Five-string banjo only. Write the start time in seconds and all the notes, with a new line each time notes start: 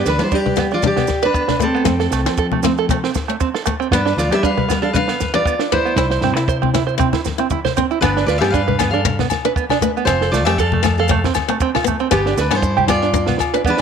0.08 B4
0.20 B3
0.32 D4
0.46 B4
0.58 B3
0.72 D4
0.97 B3
1.23 B4
1.34 B3
1.48 D4
1.60 muted five-string banjo stroke
1.75 B3
1.86 C4
2.00 A4
2.13 A3
2.26 C4
2.38 A4
2.52 A3
2.64 C4
2.79 A4
2.90 A3
3.04 C4
3.28 A3
3.40 C4
3.54 A4
3.66 A3
3.80 C4
3.92 B3
4.05 D4
4.31 B3
4.43 D4
4.57 B4
4.69 B3
4.82 D4
5.09 B3
5.34 B4
5.46 B3
5.60 D4
5.72 B4
5.85 B3
5.97 E4
6.11 C5
6.24 C4
6.36 E4
6.48 C5
6.62 C4
6.75 E4
6.87 C5
6.99 C4
7.13 E4
7.39 C4
7.51 E4
7.65 C5
7.77 C4
7.91 E4
8.03 B3
8.17 D4
8.28 B4
8.42 B3
8.54 D4
8.68 B4
8.80 B3
8.93 D4
9.20 B3
9.45 B4
9.56 B3
9.71 D4
9.82 B4
9.97 B3
10.09 C4
10.22 A4
10.34 A3
10.47 A3
10.60 A4
10.73 A3
10.86 muted five-string banjo stroke
11.00 A4
11.11 A3
11.25 C4
11.50 A3
11.62 C4
11.76 F4
11.88 A3
12.00 C4
12.12 B3
12.27 D4
12.38 B4
12.51 B3
12.63 muted five-string banjo stroke
12.77 G4
12.89 B3
13.02 D4
13.28 B3
13.54 B4
13.65 B3